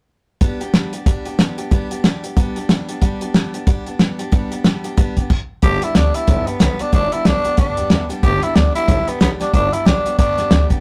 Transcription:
0.41 G3 B3 D4 G4, kick, closed hi-hat
0.60 B3 D4 G4, closed hi-hat
0.74 G3 B3 D4 G4, snare, closed hi-hat
0.93 B3 D4 G4, closed hi-hat
1.06 G3 B3 D4 G4, kick, closed hi-hat
1.25 B3 D4 G4, closed hi-hat
1.38 G3 B3 D4 G4, snare, closed hi-hat
1.58 B3 D4 G4, closed hi-hat
1.71 G3 B3 D4 G4, kick, closed hi-hat
1.90 B3 D4 G4, closed hi-hat
2.04 G3 B3 D4 G4, snare, closed hi-hat
2.23 B3 D4 G4, closed hi-hat
2.37 G3 B3 D4 G4, kick, closed hi-hat
2.56 B3 D4 G4, closed hi-hat
2.69 G3 B3 D4 G4, snare, closed hi-hat
2.89 B3 D4 G4, closed hi-hat
3.02 G3 B3 D4 G4, kick, closed hi-hat
3.21 B3 D4 G4, closed hi-hat
3.34 G3 B3 D4 G4, snare, closed hi-hat
3.54 B3 D4 G4, closed hi-hat
3.67 G3 B3 D4 G4, kick, closed hi-hat
3.86 B3 D4 G4, closed hi-hat
3.99 G3 B3 D4 G4, snare, closed hi-hat
4.19 B3 D4 G4, closed hi-hat
4.32 G3 B3 D4 G4, kick, closed hi-hat
4.50 B3 D4 G4, closed hi-hat
4.64 G3 B3 D4 G4, snare, closed hi-hat
4.84 B3 D4 G4, closed hi-hat
4.97 G3 B3 D4 G4, kick, closed hi-hat
5.17 B3 D4 G4, kick, closed hi-hat
5.30 kick, crash
5.62 G1 G2 D3 G3 B3 D4 G4, kick, closed hi-hat
5.82 G3 B3 D4 E4 G4, muted upright bass stroke, closed hi-hat
5.95 D2 G3 B3 D4 G4, snare, closed hi-hat
6.14 G3 B3 D4 E4 G4, closed hi-hat
6.27 B1 G2 D3 G3 B3 D4 G4, kick, closed hi-hat
6.46 G3 B3 D4 G4, closed hi-hat
6.59 B1 G3 B3 D4 G4, snare, closed hi-hat
6.79 G3 B3 D4 G4, muted upright bass stroke, closed hi-hat
6.92 G1 G2 D3 G3 B3 D4 G4, kick, closed hi-hat
7.12 G3 B3 D4 E4 G4, muted upright bass stroke, closed hi-hat
7.25 B1 G3 B3 D4 G4, snare, closed hi-hat
7.45 G3 B3 D4 G4, muted upright bass stroke, closed hi-hat
7.57 D2 G2 D3 G3 B3 D4 G4, kick, snare, closed hi-hat
7.77 E2 G3 B3 D4 G4, closed hi-hat
7.90 E2 G3 B3 D4 G4, snare, closed hi-hat
8.09 G3 B3 D4 G4, muted upright bass stroke, closed hi-hat
8.23 G1 G2 D3 G3 B3 D4 G4, kick, closed hi-hat
8.42 G3 B3 D4 E4 G4, muted upright bass stroke, closed hi-hat
8.55 D2 G3 B3 D4 G4, snare, closed hi-hat
8.75 G3 B3 D4 E4 G4, closed hi-hat
8.88 B1 G2 D3 G3 B3 D4 G4, kick, closed hi-hat
9.07 G3 B3 D4 G4, muted upright bass stroke, closed hi-hat
9.20 B1 G3 B3 D4 G4, snare, closed hi-hat
9.40 G3 B3 D4 G4, muted upright bass stroke, snare, closed hi-hat
9.53 G1 G2 D3 G3 B3 D4 G4, kick, closed hi-hat
9.72 G3 B3 D4 E4 G4, closed hi-hat
9.85 B1 G3 B3 D4 G4, snare, closed hi-hat
10.05 G3 B3 D4 G4, muted upright bass stroke, closed hi-hat
10.18 D2 G2 D3 G3 B3 D4 G4, kick, snare, closed hi-hat
10.38 E2 G3 B3 D4 G4, snare, closed hi-hat
10.50 D2 G3 B3 D4 G4, snare, closed hi-hat
10.69 G3 B3 D4 G4, kick, closed hi-hat

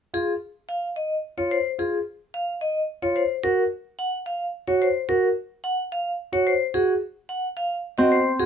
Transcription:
0.14 F4 G#4
0.69 F5
0.96 D#5
1.38 F4 C#5
1.51 C5
1.79 F4 G#4
2.34 F5
2.61 D#5
3.02 F4 C#5
3.16 C5
3.44 F#4 A#4
3.99 F#5
4.26 F5
4.68 F#4 C#5
4.82 C5
5.09 F#4 A#4
5.64 F#5
5.92 F5
6.32 F#4 C#5
6.47 C5
6.74 F#4 G#4
7.29 F#5
7.57 F5
7.98 C4 F#4 D#5
8.12 C5
8.39 F#4 G#4

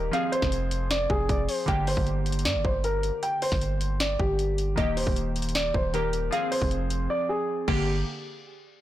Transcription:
Already playing: D#1 D#3 A#3 G4 A#4
0.11 F3 C4 G#4 F5, closed hi-hat
0.32 C5, closed hi-hat
0.42 F1, kick, snare
0.52 closed hi-hat
0.71 closed hi-hat
0.91 D5, snare, closed hi-hat
1.10 F1 G#4, kick
1.29 F1 D5, kick, closed hi-hat
1.49 C5, open hi-hat
1.66 G1 D3 A#3 G4 G5, kick, closed hi-hat
1.87 C5, open hi-hat
1.97 G1, kick
2.07 closed hi-hat
2.26 closed hi-hat
2.32 closed hi-hat
2.39 closed hi-hat
2.45 G2 D5, snare, closed hi-hat
2.55 G1
2.65 G1 C5, kick
2.84 A#4, closed hi-hat
3.03 closed hi-hat
3.23 G5, closed hi-hat
3.42 C5, open hi-hat
3.52 G1, kick, snare
3.61 closed hi-hat
3.81 closed hi-hat
4.00 D5, snare, closed hi-hat
4.19 G1 G4, kick
4.39 closed hi-hat
4.58 closed hi-hat
4.76 D#1 D#3 A#3 G4 D#5, kick, closed hi-hat
4.97 C5, open hi-hat
5.07 D#1, kick
5.16 closed hi-hat
5.36 closed hi-hat
5.42 closed hi-hat
5.49 closed hi-hat
5.55 D5, snare, closed hi-hat
5.74 D#1 C5, kick
5.93 D#3 A#3 G4 A#4, closed hi-hat
6.13 closed hi-hat
6.31 F3 C4 G#4 F5, closed hi-hat
6.52 C5, open hi-hat
6.62 F1, kick
6.71 closed hi-hat
6.90 closed hi-hat
7.10 D5
7.29 G#4
7.68 G1 D3 A#3 G4, kick, crash

